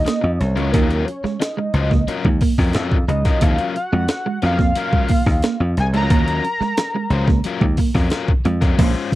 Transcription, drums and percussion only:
0.06 snare, closed hi-hat
0.41 snare, closed hi-hat
0.57 closed hi-hat
0.74 kick, closed hi-hat
0.90 closed hi-hat
1.08 closed hi-hat
1.25 snare
1.42 snare, closed hi-hat
1.74 closed hi-hat
1.91 kick, snare
2.08 closed hi-hat
2.25 kick
2.41 kick, open hi-hat
2.58 kick, snare
2.73 snare, closed hi-hat
2.92 kick
3.09 closed hi-hat
3.25 kick, snare, closed hi-hat
3.41 kick, closed hi-hat
3.58 closed hi-hat
3.76 closed hi-hat
4.08 snare, closed hi-hat
4.42 snare, closed hi-hat
4.59 kick, snare
4.75 closed hi-hat
4.93 kick
5.09 kick, open hi-hat
5.26 kick, snare
5.42 snare, closed hi-hat
5.77 snare, closed hi-hat
5.94 closed hi-hat
6.10 kick, closed hi-hat
6.28 closed hi-hat
6.45 closed hi-hat
6.61 snare
6.77 snare, closed hi-hat
7.11 closed hi-hat
7.28 kick, snare
7.44 closed hi-hat
7.61 kick
7.77 kick, open hi-hat
7.95 kick, snare
8.10 snare, closed hi-hat
8.28 kick
8.45 closed hi-hat
8.62 kick, snare, closed hi-hat
8.79 kick, closed hi-hat, crash

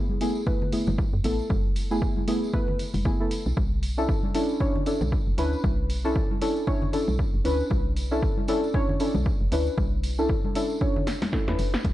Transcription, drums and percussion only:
0.09 high conga
0.21 open hi-hat, tambourine
0.35 tambourine
0.46 kick, tambourine
0.62 low conga
0.72 open hi-hat, tambourine
0.87 tambourine, high conga, low conga
0.98 kick, tambourine
1.24 open hi-hat, tambourine
1.39 tambourine
1.50 kick, tambourine, high conga
1.76 open hi-hat, tambourine
1.91 tambourine
2.02 kick, tambourine
2.16 high conga
2.28 open hi-hat, tambourine
2.44 tambourine
2.54 kick
2.68 low conga
2.79 open hi-hat, tambourine
2.94 open hi-hat, tambourine, high conga
3.05 kick, tambourine
3.31 open hi-hat, tambourine
3.46 tambourine
3.57 kick, high conga
3.83 open hi-hat, tambourine
3.98 tambourine
4.09 kick, tambourine
4.23 high conga
4.35 open hi-hat, tambourine
4.49 tambourine
4.60 kick
4.76 low conga
4.86 open hi-hat, tambourine
5.01 tambourine, high conga, low conga
5.12 kick, tambourine
5.38 open hi-hat, tambourine
5.53 tambourine
5.64 kick, tambourine, high conga
5.90 open hi-hat, tambourine
6.05 tambourine
6.15 kick, tambourine
6.31 high conga
6.42 open hi-hat, tambourine
6.56 tambourine
6.67 kick, tambourine
6.82 low conga
6.93 open hi-hat, tambourine
7.08 tambourine, high conga
7.19 kick, tambourine
7.45 open hi-hat, tambourine
7.60 tambourine
7.70 kick, tambourine, high conga
7.97 open hi-hat, tambourine
8.12 tambourine
8.22 kick, tambourine
8.37 high conga
8.48 open hi-hat, tambourine
8.63 tambourine
8.74 kick
8.89 low conga
9.00 open hi-hat, tambourine
9.14 tambourine, high conga, low conga
9.25 kick, tambourine
9.52 open hi-hat, tambourine
9.66 tambourine
9.78 kick, tambourine, high conga
10.04 open hi-hat, tambourine
10.18 tambourine
10.28 kick, tambourine
10.44 high conga
10.55 open hi-hat, tambourine
10.70 tambourine
10.81 kick
10.96 low conga
11.07 snare, open hi-hat, tambourine
11.22 snare, open hi-hat, tambourine, high conga
11.33 kick, snare, tambourine
11.48 snare
11.59 open hi-hat, tambourine
11.74 snare, tambourine
11.84 kick, closed hi-hat, tambourine, high conga

